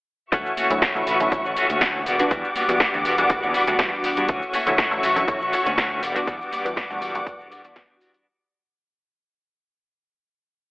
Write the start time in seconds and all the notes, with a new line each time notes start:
0.32 D2 E3 A3 C#4 F#4 E5 C#6, kick, closed hi-hat, tambourine, shaker
0.45 tambourine, shaker
0.57 E3 A3 C#4 F#4, open hi-hat, tambourine, high conga, shaker
0.70 D2 D3 F#3 A3 C#4 E4, closed hi-hat, tambourine, low conga, shaker
0.82 E3 A3 C#4 F#4, kick, snare, tambourine, shaker
0.95 A1 D3 F#3 A3 C#4 E4, tambourine, shaker
1.06 A1 E3 A3 C#4 F#4, open hi-hat, tambourine, shaker
1.20 D3 F#3 A3 C#4 E4, closed hi-hat, tambourine, low conga, shaker
1.31 A1 D3 F#3 A3 C#4 E4, kick, closed hi-hat, tambourine, shaker
1.44 A1 A3 C#4 F#4, tambourine, shaker
1.56 E3 A3 C#4 F#4, open hi-hat, tambourine, shaker
1.69 D2 A3 C#4 F#4, closed hi-hat, tambourine, high conga, shaker
1.81 E3 A3 C#4 F#4, kick, snare, closed hi-hat, tambourine, shaker
1.93 tambourine
2.06 E1 G3 B3 D4 F#4 F#5 D6, open hi-hat, tambourine, shaker
2.19 E3 G3 B3 D4 F#4, closed hi-hat, tambourine, shaker
2.31 E2 G3 B3 D4 F#4, kick, closed hi-hat, tambourine, shaker
2.44 tambourine, shaker
2.55 G3 B3 D4 F#4, open hi-hat, tambourine, high conga, shaker
2.68 E2 E3 G3 B3 D4 F#4, closed hi-hat, tambourine, low conga, shaker
2.80 G3 B3 D4 F#4, kick, snare, tambourine, shaker
2.93 D2 E3 G3 B3 D4 F#4, tambourine, shaker
3.05 E1 G3 B3 D4 F#4, open hi-hat, tambourine, shaker
3.18 E3 G3 B3 D4 F#4, closed hi-hat, tambourine, low conga, shaker
3.29 E3 G3 B3 D4 F#4, kick, closed hi-hat, tambourine, shaker
3.42 E2 B3 D4 F#4, tambourine, shaker
3.54 G3 B3 D4 F#4, open hi-hat, tambourine, shaker
3.67 D2 E3 G3 B3 D4 F#4, closed hi-hat, tambourine, shaker
3.79 E2 E3 G3 B3 D4 F#4, kick, snare, closed hi-hat, tambourine, shaker
3.92 tambourine
4.04 G3 B3 D4 F#4, muted fingered electric bass stroke, open hi-hat, tambourine, shaker
4.17 G2 B3 D4 F#4, closed hi-hat, tambourine, shaker
4.29 D2 F#4 E5 C#6, kick, closed hi-hat, tambourine, shaker
4.42 tambourine, shaker
4.53 E3 A3 C#4 F#4, open hi-hat, tambourine, high conga, shaker
4.66 D2 D3 F#3 A3 C#4 E4, closed hi-hat, tambourine, low conga, shaker
4.78 E3 A3 C#4 F#4, kick, snare, tambourine, shaker
4.91 A1 D3 F#3 A3 C#4 E4, tambourine, shaker
5.02 A1 E3 A3 C#4 F#4, open hi-hat, tambourine, shaker
5.16 D3 F#3 A3 C#4 E4, closed hi-hat, tambourine, low conga, shaker
5.27 A1 D3 F#3 A3 C#4 E4, kick, closed hi-hat, tambourine, shaker
5.41 A1 A3 C#4 F#4, tambourine, shaker
5.52 E3 A3 C#4 F#4, open hi-hat, tambourine, shaker
5.66 D2 A3 C#4 F#4, closed hi-hat, tambourine, high conga, shaker
5.77 E3 A3 C#4 F#4, kick, snare, closed hi-hat, tambourine, shaker
5.91 tambourine
6.01 E1 G3 B3 D4 F#4 F#5 D6, open hi-hat, tambourine, shaker
6.15 E3 G3 B3 D4 F#4, closed hi-hat, tambourine, shaker
6.27 E2 G3 B3 D4 F#4, kick, closed hi-hat, tambourine, shaker
6.41 tambourine, shaker
6.51 G3 B3 D4 F#4, open hi-hat, tambourine, high conga, shaker
6.65 E2 E3 G3 B3 D4 F#4, closed hi-hat, tambourine, low conga, shaker
6.76 G3 B3 D4 F#4, kick, snare, tambourine, shaker
6.90 D2 E3 G3 B3 D4 F#4, tambourine, shaker
7.01 E1 G3 B3 D4 F#4, open hi-hat, tambourine, shaker
7.14 E3 G3 B3 D4 F#4, closed hi-hat, tambourine, high conga, low conga, shaker
7.26 E1 E3 G3 B3 F#4, kick, closed hi-hat, tambourine, shaker
7.39 B3 D4 F#4, tambourine, shaker
7.51 G3 B3 D4 F#4, open hi-hat, tambourine, shaker
7.64 E3 G3 B3 D4 F#4, closed hi-hat, tambourine, shaker
7.76 E3 G3 B3 D4 F#4, kick, snare, closed hi-hat, shaker
7.89 tambourine
8.00 G3 B3 D4 F#4, open hi-hat, tambourine, shaker
8.13 B3 D4 F#4, closed hi-hat, tambourine, shaker